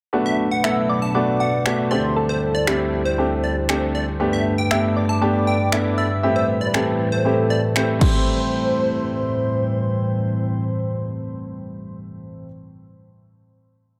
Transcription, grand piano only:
0.13 A3 B3 D4 F#4
0.64 A3 B3 D4 E4
1.15 A3 B3 D4 F#4
1.65 A3 B3 D4 F#4
1.91 A3 C4 D4 G4
2.67 A3 C4 D4 E4
3.18 A3 C4 D4 G4
3.69 A3 C4 D4 G4
4.20 A3 B3 D4 G4
4.71 A3 B3 D4 G4
5.21 A3 B3 D4 G4
5.72 A3 B3 D4 E4
6.23 A3 C4 E4 G4
6.74 A3 C4 E4 G4
7.25 A3 C4 E4 G4
7.76 A3 C4 E4 G4
7.99 A3 C4 E4
8.03 G4

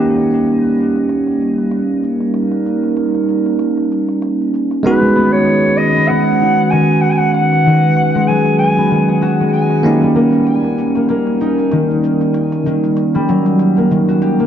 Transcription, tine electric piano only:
Already playing: A#3 C#4 D#4 G4
4.83 G#3 B3 D#4 F#4
9.83 A#3 C#4 D#4

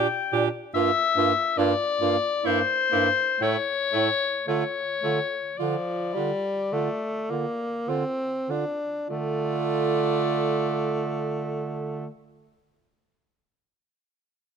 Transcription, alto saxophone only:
0.32 G4
0.75 F4
1.17 F4
1.58 F4
2.01 F4
2.44 E4
2.92 E4
3.41 E4
3.93 E4
4.48 F4
5.04 F4
5.59 F4
6.15 F4
6.73 F4
7.30 F4
7.88 F4
8.49 F4
9.08 F4

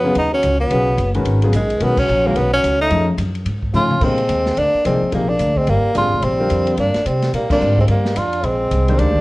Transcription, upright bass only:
Already playing: F2
0.15 D#2
0.44 C#2
0.71 B1
0.97 F#1
1.25 G#1
1.53 A#1
1.81 B1
2.09 A#1
2.36 B1
2.64 C#2
2.91 F2
3.18 F#2
3.45 G#2
3.74 A2
4.01 A#2
4.29 D#2
4.57 D2
4.74 muted upright bass stroke
4.85 C2
5.01 muted upright bass stroke
5.12 A#1
5.40 D2
5.68 G1
5.95 A1
6.04 G#1
6.14 F1
6.23 A#1
6.51 F2
6.78 G2
6.95 muted upright bass stroke
7.06 C3
7.33 A#2
7.61 G#2
7.88 G2
8.16 F2
8.44 A#1
8.71 C2
9.00 D2

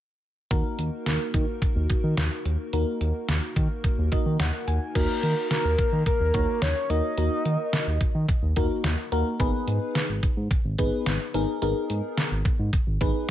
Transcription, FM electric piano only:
0.51 A#3 D#4 F#4 A#4
2.73 A#3 D#4 F#4 A#4
4.12 A#3 D#4 F#4 A#4 D#5
4.40 F#5
4.67 G#5
4.95 A#3 D#4 F#4 A#4
6.34 A#3 D#4 F#4 C#5
6.90 A#3 D#4 F#4 A#4
7.18 A#3 D#4 F#4 A#4
8.57 A#3 D#4 F#4 A#4
9.12 A#3 D#4 F#4 A#4
9.40 B3 D#4 G#4 B4
10.79 B3 D#4 G#4 B4
11.34 B3 D#4 G#4 A#4
11.62 B3 D#4 G#4 A#4
13.01 B3 D#4 G#4 B4

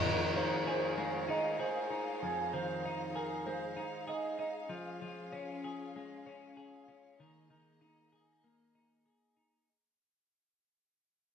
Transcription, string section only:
Already playing: D#4 G#4 C5 F5
4.70 F3 C#4 F4
7.19 A#3 D#4 D#5

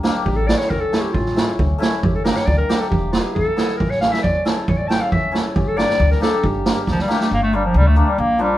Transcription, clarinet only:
0.25 G4
0.36 A4
0.48 D5
0.58 C#5
0.70 A#4
0.80 A4
1.01 G4
1.13 F4
2.04 G4
2.15 A4
2.24 A#4
2.36 C#5
2.47 D5
2.58 A#4
2.80 A4
2.90 G4
3.13 F4
3.23 G4
3.34 A4
3.77 A#4
3.90 C#5
4.01 F5
4.12 E5
4.23 D5
4.68 C#5
4.78 D5
4.88 G5 A5
5.01 F5
5.12 E5
5.55 G4
5.68 A4
5.78 D5
6.11 A#4
6.23 A4
6.46 G4
6.91 F3
7.01 G3
7.11 A3
7.33 A#3
7.43 A3
7.55 G3
7.65 F3
7.77 G3
7.87 A3
7.98 A3
8.09 G3
8.19 A#3
8.42 G3

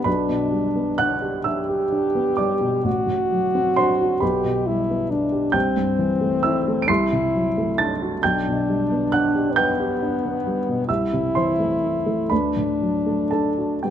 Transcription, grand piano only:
0.04 B1 B4 B5
0.29 B2
0.52 G3
0.75 B3
0.98 D4 F#5 F#6
1.22 G4
1.44 D4 E5 E6
1.69 G4
1.92 D4
2.15 B3
2.37 G3 D5 D6
2.61 B2
2.84 A1
3.07 A2
3.31 F#3
3.55 C4
3.76 D4 C5 C6
4.01 F#4
4.20 B1 B4 B5
4.44 B2
4.68 G3
4.90 B3
5.11 D4
5.32 G4
5.52 C2 G5 G6
5.77 G2
5.99 E3
6.21 A3
6.43 E4 E5 E6
6.68 A3
6.82 D7
6.88 C2 C6 C7
7.12 C3
7.35 F#3
7.58 A3
7.78 D4 A5 A6
8.02 F#4
8.23 B1 G5 G6
8.48 B2
8.69 G3
8.91 B3
9.12 D4 F#5 F#6
9.35 G4
9.56 B4 G5 G6
9.80 G4
10.02 D4
10.25 B3
10.47 G3
10.69 B2
10.89 C2 E5 E6
11.13 C3
11.35 E3 C5 C6
11.60 A3
11.84 E4
12.06 A3
12.30 D2 B4 B5
12.57 A2
12.82 F#3
13.06 A3
13.31 D4 A4 A5
13.58 F#4
13.83 G2 G4 G5

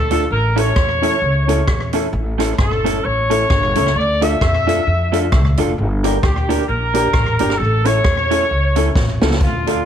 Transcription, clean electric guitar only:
0.11 A3 D4 F4 A4
0.56 A3 C#4 E4 A4
1.02 A3 C#4 E4 A4
1.48 A3 C#4 E4 A4
1.93 A3 C#4 E4 A4
2.38 A3 C#4 E4 A4
2.84 A3 C#4 E4 A4
3.30 A3 C#4 E4 A4
3.76 A3 C#4 E4 A4
4.21 A3 D4 F4 A4
4.67 A3 D4 F4 A4
5.12 A3 D4 F4 A4
5.58 A3 D4 F4 A4
6.04 A#3 D4 G4 A#4
6.49 A#3 D4 G4 A#4
6.94 A#3 D4 G4 A#4
7.40 A#3 D4 G4 A#4
7.85 A3 C#4 E4 A4
8.31 A3 C#4 E4 A4
8.76 A3 C#4 E4 A4
9.22 A3 C#4 E4 A4
9.67 F3 A3 D4 F4

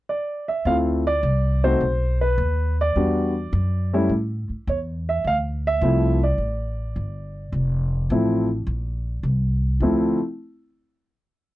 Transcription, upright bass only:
0.65 D2
1.23 C2
1.81 B1
2.38 D#2
2.96 E2
3.53 F#2
4.09 A2
4.49 muted upright bass stroke
4.67 E2
5.24 D2
5.81 C2
6.38 A1
6.96 G1
7.52 F1
8.10 A1
8.67 A#1
9.23 C2
9.80 D2

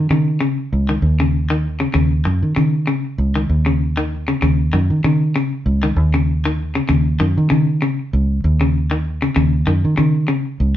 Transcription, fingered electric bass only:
0.10 D#3
0.72 C#2
1.02 D#2
1.95 D#2
2.26 F#2
2.42 D#3
2.57 D#3
3.18 C#2
3.49 D#2
4.42 D#2
4.73 F#2
4.90 D#3
5.04 D#3
5.66 C#2
5.96 D#2
6.89 D#2
7.20 F#2
7.38 D#3
7.52 D#3
8.13 C#2
8.44 D#2
9.36 D#2
9.67 F#2
9.85 D#3
9.98 D#3
10.60 C#2

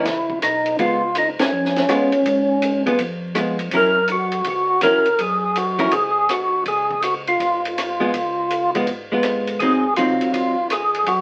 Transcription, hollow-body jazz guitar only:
0.79 G#3 B3 F4
1.89 G#3 B3 F4
2.86 G#3 B3 F4
3.35 G#3 B3 F4
3.73 F#3 C#4 E4 A#4
4.83 F#3 C#4 E4 A#4
5.79 F#3 C#4 E4 A#4
8.00 G#3 B3 F4
8.75 G#3 B3 F4
9.12 G#3 B3 F4
9.62 F#3 C4 D#4
9.98 F#3 C4 D#4

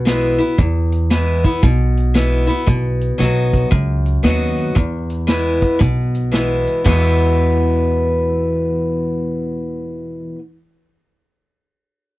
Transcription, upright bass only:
Already playing: B1
0.58 E2
1.63 B1
2.67 B1
3.19 B1
3.72 C#2
4.24 D#2
4.76 E2
5.81 B1
6.85 E2

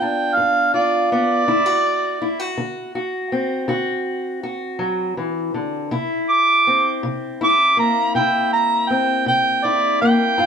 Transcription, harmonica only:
0.00 G5
0.35 F5
0.74 D5
1.11 D5
6.29 D6
7.43 D6
7.79 A#5
8.15 G5
8.53 A#5
8.89 G5
9.27 G5
9.65 D5
10.01 G5

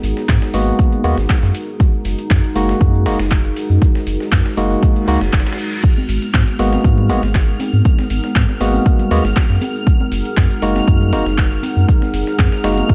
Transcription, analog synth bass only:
0.03 G#1
0.29 G#2
0.54 G#1
1.04 D#2
1.18 G#1
1.43 F#2
2.05 F#1
2.31 F#2
2.56 F#1
2.81 F#2
3.06 F#1
3.20 F#1
3.70 F#2
4.07 F#1
4.32 F#2
4.57 F#1
5.08 C#2
5.21 F#1
5.33 F#1
6.09 G#1
6.34 G#2
6.59 G#1
6.84 G#2
7.10 G#1
7.23 G#1
7.73 G#2
8.10 G#1
8.36 G#2
8.61 G#1
9.11 D#2
9.25 G#1
9.50 F#2
10.12 F#1
10.37 F#2
10.62 F#1
10.88 F#2
11.13 F#1
11.26 F#1
11.77 F#2
12.14 F#1
12.39 F#2
12.64 F#1

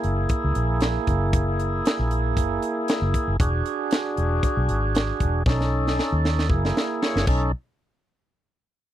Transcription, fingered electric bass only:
0.04 F#1
0.44 C#2
0.56 A#1
1.07 F#1
1.99 A#1
2.37 F#1
3.02 F#1
3.28 F#1
3.40 E1
4.18 E1
4.57 B1
4.69 G#1
5.20 E1
5.46 B1
6.12 D#2
6.50 F#1
7.16 F#1
7.27 B1

